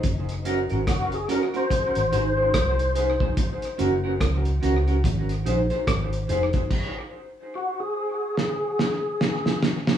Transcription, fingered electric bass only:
X:1
M:4/4
L:1/16
Q:"Swing 16ths" 1/4=72
K:Abmix
V:1 name="Fingered electric bass" clef=bass
G,,,3 A,,, G,,,2 z3 A,,, A,,,2 C,,4 | z2 G,,,2 D,,2 D,,2 A,,,2 B,,, z A,,,2 F,,, z | z16 |]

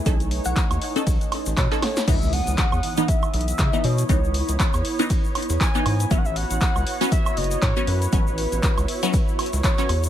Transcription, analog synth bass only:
X:1
M:4/4
L:1/16
Q:"Swing 16ths" 1/4=119
K:C#m
V:1 name="Analog synth bass" clef=bass
B,,,3 B,,, z D,, z2 B,,, z2 A,,, B,, z3 | C,,3 C,, z E,, z4 B,,, z C, z B,, z | C,,3 C,, z E,, z4 z E,, z2 G,, z | A,,,3 A,,, z C,, z4 F,,, z A,, z F,, z |
A,,,3 A,,, z C,, z4 z C,, z2 E,, z |]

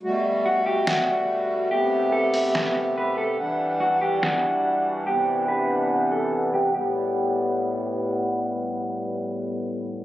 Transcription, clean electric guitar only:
X:1
M:4/4
L:1/8
Q:1/4=143
K:G
V:1 name="Clean electric guitar"
z2 F G F4 | G2 A2 z2 B A | z2 F G F4 | G2 B3 A2 G |
G6 z2 | z8 |]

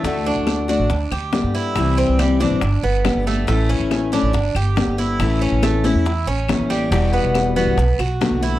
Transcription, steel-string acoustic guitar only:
X:1
M:4/4
L:1/8
Q:1/4=140
K:D
V:1 name="Steel-string acoustic guitar"
[D,A,DF]3 [A,DF] z2 [D,G,B,G]2 | [=C,E,G,=CE]3 [E,G,CE] z2 [D,G,B,G]2 | [E,A,CE]3 [A,CE] z2 [D,G,B,G]2 | [E,A,CE]3 [A,CE] z2 [E,A,CE]2 |
[B,,E,G,B,F]3 [E,G,B,F] z2 [D,A,B,F]2 |]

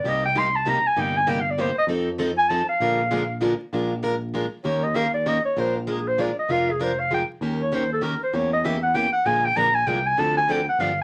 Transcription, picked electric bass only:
X:1
M:3/4
L:1/8
Q:"Swing" 1/4=195
K:Bbmix
V:1 name="Picked electric bass" clef=bass
C,,6 | G,,,6 | F,,6 | B,,,6 |
B,,,6 | E,,6 | B,,,6 | F,,,6 |
E,,6 | =E,,6 | B,,,2 B,,,2 C,,2 | D,,4 G,,,2 |]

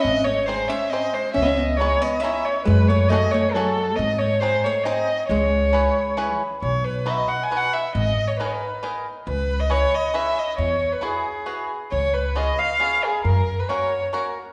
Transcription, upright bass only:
X:1
M:3/4
L:1/8
Q:"Swing" 1/4=136
K:C#m
V:1 name="Upright bass" clef=bass
G,,,4 z2 | C,,4 z2 | F,,4 z2 | G,,4 z2 |
C,,4 z2 | [K:B] B,,,4 z2 | G,,, z4 z | C,,4 z2 |
E,, z4 z | C,,4 z2 | F,, z4 z |]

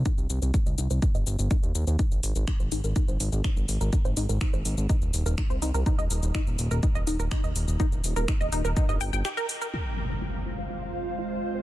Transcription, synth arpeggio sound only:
X:1
M:4/4
L:1/16
Q:1/4=124
K:Fm
V:1 name="Synth arpeggio sound"
E z2 c E e E c E e z2 E z2 c | E z2 B E c E B E c z2 E z2 B | E c E B E c z2 E z2 B E c E B | E e z2 E z2 B E e E B E e z2 |
E z2 B E e E B E e g g G B z B | F z2 c F f F c F f z2 F z2 c |]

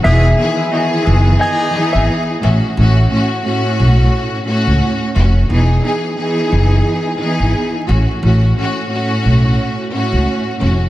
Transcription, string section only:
X:1
M:4/4
L:1/8
Q:"Swing 16ths" 1/4=88
K:E
V:1 name="String section"
[D,E,B,G] [D,E,B,G] [D,E,B,G]3 [E,B,DG]2 [A,,A,CF] | [A,,A,CF] [A,,A,CF] [A,,A,CF]3 [A,,A,CF]2 [A,,A,CF] | [E,B,DG] [E,B,DG] [E,B,DG]3 [E,B,DG]2 [A,,A,CF] | [A,,A,CF] [A,,A,CF] [A,,A,CF]3 [A,,A,CF]2 [A,,A,CF] |]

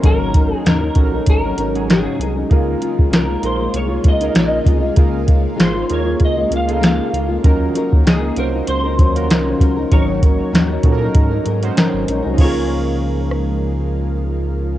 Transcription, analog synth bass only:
X:1
M:4/4
L:1/16
Q:"Swing 16ths" 1/4=97
K:Db
V:1 name="Analog synth bass" clef=bass
A,,,4 E,,2 B,,,2 A,,,2 A,,,4 C,,2 | D,,2 z D,, C,,2 B,,,2 C,,2 D,,2 B,,,2 C,,2 | D,,4 A,,,2 E,,2 D,,2 D,,4 D,,2 | E,,2 z E,, D,,2 C,,2 D,,2 E,,2 C,,2 D,,2 |
A,,,4 E,,2 B,,2 A,,2 A,,2 z A,,, B,,, C,, | D,,16 |]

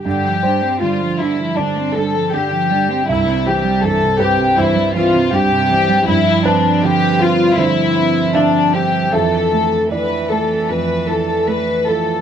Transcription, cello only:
X:1
M:4/4
L:1/16
Q:1/4=79
K:Gmix
V:1 name="Cello" clef=bass
D, F, G, C G, F, D, F, G, C G, F, D, F, G, C | G,, C, E, G, E, C, G,, C, E, G, E, C, G,, C, E, G, | F,8 F,8 | E,4 E,8- E,3 z |]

